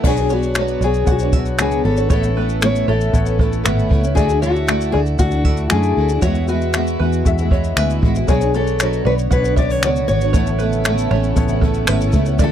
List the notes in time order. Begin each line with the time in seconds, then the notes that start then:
0.03 B1 B2 F#3 B3 D4 F#4 G#4 C#5 D5, kick, crash
0.17 B3 D4 F#4 C#5, shaker
0.30 B3 D4 F#4 C#5, shaker
0.43 shaker
0.55 B2 F#3 B3 D4 F#4 C#5, finger snap, shaker
0.68 shaker
0.81 B1 B3 D4 F#4 G#4 D5, shaker
0.85 C#5
0.94 shaker
1.05 B1 B3 D4 C#5 F#5, kick, shaker
1.11 F#4
1.19 B3 D4 F#4 C#5, shaker
1.33 B3 D4 F#4 E5, kick, shaker
1.37 C#5
1.45 shaker
1.58 C#2 B2 F#3 B3 D4 F#4 G#4 C#5, finger snap, shaker
1.71 shaker
1.84 G#1 B3 D4 F#4 A4 C#5
1.97 B3 D4 F#4 C#5, shaker
2.08 A1 A2 A3 B3 C#4 A4 C#5, kick, shaker
2.13 E4
2.23 B3 C#4 E4, shaker
2.36 A3 B3 C#4 E4 B4
2.49 shaker
2.61 A2 A3 B3 C#4 E4 C#5, finger snap, shaker
2.75 shaker
2.87 A1 A3 B3 C#4 E4 A4 C#5
3.01 shaker
3.13 A1 B3 A4 C#5, kick, shaker
3.25 B3 C#4 E4, shaker
3.38 A3 B3 C#4 E4 A4, kick
3.53 shaker
3.64 G#1 A2 A3 B3 C#4 E4 B4, finger snap, shaker
3.79 shaker
3.89 C#2 A3 B3 C#4 E4, kick
4.01 B3 C#4 E4, shaker
4.14 D2 D3 A3 D4 E4 F#4 G#4 D5 E5, kick, shaker
4.28 D4 E4 F#4, shaker
4.40 A3 D4 E4 F#4 C#5, shaker
4.56 shaker
4.67 D3 A3 D4 E4 F#4, finger snap, shaker
4.81 shaker
4.92 D2 A3 D4 E4 F#4 G#4 D5
5.06 shaker
5.19 D2 D4 F#4 A4 F#5, kick, shaker
5.31 D4 E4 F#4, shaker
5.43 A3 D4 E4 F#4 E5, kick
5.57 shaker
5.70 F#2 D3 A3 D4 E4 F#4 G#4, finger snap, shaker
5.83 shaker
5.97 D2 A3 D4 E4 F#4
6.09 E4 F#4, shaker
6.13 D4
6.21 E2 E3 G#3 B3 E4 F#4 C#5 E5, kick, shaker
6.35 G#3 B3 E4 F#4, shaker
6.48 G#3 B3 E4 F#4 B4, shaker
6.61 shaker
6.73 E2 E3 G#3 B3 E4 F#4, finger snap, shaker
6.87 shaker
6.99 E2 G#3 B3 E4 F#4 B4
7.13 shaker
7.25 E2 G#3 F#4 E5, kick, shaker
7.38 G#3 B3 E4 F#4, shaker
7.50 G#3 B3 E4 F#4 C#5, kick
7.64 shaker
7.76 D2 E2 E3 G#3 B3 E4 F#4 B4, finger snap, shaker
7.90 shaker
8.02 A1 G#3 B3 E4 F#4, kick
8.14 G#3 B3 E4 F#4, shaker
8.27 B1 B2 D3 F#3 B3 D4 F#4 G#4 C#5 D5, kick, shaker
8.40 B3 D4 F#4 C#5, shaker
8.54 B3 D4 F#4 A4 C#5, shaker
8.67 shaker
8.79 B2 F#3 B3 D4 F#4 C#5, finger snap, shaker
8.93 shaker
9.05 B1 B3 D4 F#4 B4 C#5 D5
9.18 shaker
9.30 B1 B3 C#4 B4 C#5 F#5, kick, shaker
9.38 D4
9.44 B3 D4 F#4 C#5, shaker
9.56 B3 D4 F#4 D5 E5, kick, shaker
9.61 C#5
9.70 C#5, shaker
9.83 C#2 B2 F#3 B3 D4 F#4 C#5, finger snap, shaker
9.96 shaker
10.08 G#1 B3 D4 F#4 C#5, shaker
10.21 B3 D4 F#4 C#5, shaker
10.33 A1 A2 C#3 A3 B3 C#4 E4 A4 C#5, kick, shaker
10.47 B3 C#4 E4, shaker
10.59 A3 B3 C#4 B4, shaker
10.63 E4
10.73 shaker
10.85 A2 A3 B3 C#4 E4, finger snap, shaker
10.98 shaker
11.11 A1 A3 B3 C#4 E4 C#5, finger snap
11.24 shaker
11.36 A1 B3 A4 C#5, kick, shaker
11.48 B3 C#4 E4, shaker
11.61 A3 B3 C#4 E4 A4, kick
11.74 shaker
11.87 G#1 A2 A3 B3 C#4 E4 B4, finger snap, shaker
12.01 shaker
12.12 C#2 A3 B3 C#4 E4, kick, shaker
12.25 B3 C#4 E4, shaker
12.38 D2 D3 A3 D4 E4 F#4 D5 E5, kick, shaker
12.44 A4